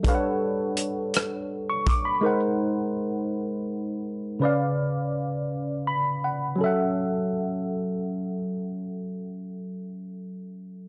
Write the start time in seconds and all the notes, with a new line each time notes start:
0.03 G3 D4 A4 B4, kick, closed hi-hat
0.07 C#5 F5
0.15 F#5
0.77 closed hi-hat
1.14 cross-stick, closed hi-hat
1.70 C#6
1.87 D6, kick, closed hi-hat
2.05 B5
2.21 G#3 D#4 A#4 C5
2.26 F#5
4.39 C#3 C#4 B4
4.43 D5 F5
5.87 B5
6.24 F#5
6.56 F#3 C#4
6.61 A4 E5
6.66 F#5